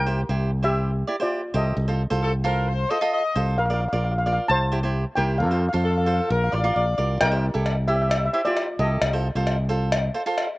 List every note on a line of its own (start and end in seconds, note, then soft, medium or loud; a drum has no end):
0.00 0.23 C2 medium
0.00 0.60 A#4 medium
0.00 0.65 G5 loud
0.07 0.20 E4 medium
0.07 0.20 G4 medium
0.07 0.20 C5 medium
0.29 1.02 C2 medium
0.29 0.50 E4 medium
0.29 0.50 G4 medium
0.29 0.50 C5 medium
0.63 0.90 E4 medium
0.63 0.90 G4 medium
0.63 1.17 G4 medium
0.63 0.90 C5 medium
0.63 1.22 E5 loud
1.07 1.15 E4 medium
1.07 1.15 G4 medium
1.07 1.15 D5 medium
1.20 1.41 E4 medium
1.20 1.53 F4 medium
1.20 1.41 G4 medium
1.20 1.40 C5 medium
1.20 1.56 D5 medium
1.54 1.72 C2 medium
1.54 1.74 E4 medium
1.54 1.74 G4 medium
1.54 2.19 A4 medium
1.54 1.75 C5 loud
1.54 2.19 D#5 medium
1.77 2.04 C2 loud
1.88 2.02 F4 medium
1.88 2.02 A4 medium
1.88 2.02 C5 medium
2.10 2.84 C2 medium
2.10 2.31 F4 medium
2.10 2.31 A4 medium
2.10 2.31 C5 loud
2.23 2.33 A4 medium
2.44 2.72 F4 medium
2.44 2.72 A4 medium
2.44 2.66 A#4 medium
2.44 2.72 C5 medium
2.68 2.90 C5 loud
2.90 2.97 F4 medium
2.90 2.97 A4 medium
2.90 2.97 C5 medium
2.90 3.11 D#5 loud
3.01 3.22 F4 medium
3.01 3.22 A4 medium
3.01 3.22 D#5 medium
3.12 3.44 D#5 loud
3.35 3.58 C2 medium
3.35 3.56 F4 medium
3.35 3.56 A4 medium
3.35 3.56 C5 loud
3.58 3.86 A#1 loud
3.58 3.66 A#4 medium
3.58 3.65 F5 loud
3.66 3.72 F5 medium
3.70 3.83 F4 medium
3.70 3.83 A#4 medium
3.70 3.83 D5 medium
3.70 3.79 F5 medium
3.81 3.87 F5 medium
3.88 3.95 F5 medium
3.93 4.38 A#1 medium
3.93 4.13 F4 medium
3.93 4.13 A#4 medium
3.93 4.13 D5 medium
3.93 4.03 F5 medium
4.04 4.10 F5 medium
4.12 4.17 F5 medium
4.18 4.25 F5 medium
4.26 4.49 F4 medium
4.26 4.49 A#4 medium
4.26 4.49 D5 medium
4.26 4.32 F5 medium
4.33 4.41 F5 medium
4.48 5.04 C2 loud
4.48 5.14 C5 medium
4.48 5.13 A5 loud
4.72 4.79 E4 medium
4.72 4.79 G4 medium
4.72 4.79 C5 medium
4.83 5.04 E4 medium
4.83 5.04 G4 medium
4.83 5.04 C5 medium
5.15 5.42 C2 loud
5.15 5.37 E4 medium
5.15 5.37 G4 medium
5.15 5.38 A#4 medium
5.15 5.37 C5 medium
5.15 5.40 G5 medium
5.38 5.67 F2 loud
5.38 5.47 A4 medium
5.38 5.45 F5 medium
5.46 5.52 F5 medium
5.51 5.64 F4 medium
5.51 5.64 A4 medium
5.51 5.65 C5 medium
5.51 5.60 F5 medium
5.61 5.67 F5 medium
5.69 5.75 F5 medium
5.73 6.19 F2 medium
5.73 5.94 F4 medium
5.73 5.94 A4 medium
5.73 5.94 C5 medium
5.73 5.83 F5 medium
5.84 6.27 A4 medium
5.84 5.90 F5 medium
5.91 5.97 F5 medium
5.98 6.04 F5 medium
6.05 6.30 F4 medium
6.05 6.30 A4 medium
6.05 6.30 C5 medium
6.05 6.12 F5 medium
6.13 6.19 F5 medium
6.20 6.27 F5 soft
6.28 6.48 A#1 loud
6.28 6.53 A#4 loud
6.28 6.35 F5 medium
6.36 6.43 F5 medium
6.44 6.50 F5 medium
6.51 6.73 A1 medium
6.51 6.59 F4 medium
6.51 6.59 A#4 medium
6.51 6.59 D5 medium
6.51 6.75 D5 medium
6.51 6.58 F5 medium
6.59 6.65 F5 medium
6.64 6.84 F4 medium
6.64 6.85 A#4 medium
6.64 6.85 D5 medium
6.64 6.73 F5 medium
6.74 6.96 A#1 medium
6.74 7.07 D5 loud
6.74 6.79 F5 medium
6.80 6.88 F5 medium
6.98 7.21 C2 medium
6.98 7.18 F4 medium
6.98 7.18 A#4 medium
6.98 7.19 D5 medium
7.21 7.48 C2 loud
7.21 7.85 A#4 medium
7.21 7.91 G5 loud
7.21 cowbell medium
7.31 7.45 E4 medium
7.31 7.45 G4 medium
7.31 7.45 C5 medium
7.54 8.28 C2 medium
7.54 7.75 E4 medium
7.54 7.75 G4 medium
7.54 7.75 A4 medium
7.66 cowbell medium
7.88 8.15 E4 medium
7.88 8.16 G4 medium
7.88 7.96 G4 medium
7.88 8.16 C5 medium
7.88 7.94 E5 medium
7.96 8.01 E5 medium
8.02 8.08 E5 medium
8.10 8.16 E5 medium
8.10 cowbell medium
8.17 8.24 E5 medium
8.25 8.32 E5 medium
8.33 8.41 E4 medium
8.33 8.41 G4 medium
8.33 8.41 C5 medium
8.33 8.41 E5 medium
8.45 8.66 E4 medium
8.45 8.78 F4 medium
8.45 8.66 G4 medium
8.45 8.66 C5 medium
8.45 8.80 D5 medium
8.57 cowbell medium
8.79 8.97 C2 medium
8.79 9.00 E4 medium
8.79 9.00 G4 medium
8.79 9.00 A4 medium
8.79 9.44 A4 medium
8.79 9.43 D#5 medium
9.01 9.29 C2 loud
9.01 cowbell loud
9.13 9.27 F4 medium
9.13 9.27 A4 medium
9.13 9.27 C5 medium
9.35 10.08 C2 medium
9.35 9.56 F4 medium
9.35 9.56 A4 medium
9.35 9.56 C5 loud
9.47 cowbell medium
9.69 9.97 F4 medium
9.69 9.97 A4 medium
9.69 9.97 C5 loud
9.92 cowbell loud
10.14 10.21 F4 medium
10.14 10.22 A4 medium
10.14 10.22 C5 medium
10.26 10.47 F4 medium
10.26 10.47 A4 medium
10.26 10.47 C5 medium
10.38 cowbell medium